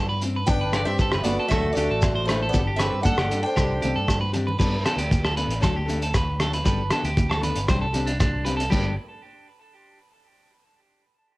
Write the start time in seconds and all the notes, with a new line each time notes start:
Already playing: G2 B3 G4 D5
0.09 B4
0.22 C4, muted steel-string acoustic guitar stroke, closed hi-hat, shekere
0.36 B4
0.47 G1 B3 D4 A4 B4 G5, kick, shekere
0.61 B4
0.72 D4 A4 D5, cross-stick, closed hi-hat, shekere
0.85 G2 C4 G4 E5
0.99 A4, kick, shekere
1.12 G1 B4, cross-stick
1.22 G1 B3 F#4 A4 D5, closed hi-hat, muted conga, high conga, shekere
1.26 D4
1.40 A4
1.48 D2 F#3 A3 D4 A4 E5, kick, cross-stick, shekere
1.52 F#4
1.73 D2 A3 D4 A4 D5, shekere
1.77 F#4 G4, closed hi-hat, muted conga
1.90 A1 A4
2.02 kick, cross-stick, high conga, shekere
2.15 C5
2.24 A3 A4 B4 C5, shekere
2.29 A3 D4 E4, cross-stick, closed hi-hat, high conga
2.42 A4
2.49 B3 D5
2.53 G1 D4 G4 A4, kick, shekere
2.67 G4
2.76 C4 D4 G4 A4 B4 E5, cross-stick, closed hi-hat, shekere
2.93 G2
3.02 D4 F#5, kick, high conga, shekere
3.06 A4
3.17 G1 G4, cross-stick
3.29 G2 D4 A4, closed hi-hat, shekere
3.42 D4 C5 G5, muted clean electric guitar stroke
3.55 C2 G3 C4 D4 G4, kick, cross-stick, muted conga, low conga, shekere
3.81 C2 C4 G4, muted steel-string acoustic guitar stroke, closed hi-hat, muted conga, high conga, low conga, shekere
3.95 G2 A4
4.08 kick, cross-stick, high conga, shekere
4.21 B4, high conga
4.33 C4 D4 G4, muted clean electric guitar stroke, closed hi-hat, low conga, shekere
4.47 B4, low conga
4.58 G2 G3 B3 D4 A4 B4, kick, crash, shekere
4.84 B3 D4 A4, cross-stick, closed hi-hat, shekere
4.96 D2 G4, closed hi-hat, shekere
5.11 kick, closed hi-hat, muted conga, high conga, shekere
5.25 A4, cross-stick
5.36 B3 D4 A4 B4, closed hi-hat, shekere
5.47 A1, closed hi-hat, shekere
5.60 D2 F#3 A3 D4 A4, kick, cross-stick, closed hi-hat, shekere
5.76 G4
5.86 A3 D4 A4, closed hi-hat, muted conga, high conga, shekere
6.02 A4, closed hi-hat, shekere
6.14 B4, kick, cross-stick, closed hi-hat, high conga, shekere
6.40 A3 D4 A4, cross-stick, closed hi-hat, shekere
6.53 B4, closed hi-hat
6.64 G1 G3 B3 D4 A4 B4, kick, closed hi-hat, muted conga, shekere
6.91 B3 D4 A4, cross-stick, closed hi-hat, shekere
7.04 D2 G4, closed hi-hat, shekere
7.17 kick, closed hi-hat, muted conga, high conga, shekere
7.30 A4, cross-stick
7.40 B3 D4 A4 B4, closed hi-hat, low conga, shekere
7.56 G1, closed hi-hat, shekere
7.67 C2 G3 C4 D4 G4 C5, kick, cross-stick, closed hi-hat, muted conga, shekere
7.81 A4
7.93 C4 D4 G4, closed hi-hat, muted conga, low conga, shekere
8.06 D4, closed hi-hat, shekere
8.20 D4, kick, cross-stick, closed hi-hat, high conga, shekere
8.45 C4 D4 G4 B4, closed hi-hat, shekere
8.57 A4, closed hi-hat
8.70 G1 G3 B3 D4 G4 A4, kick, crash, muted conga, shekere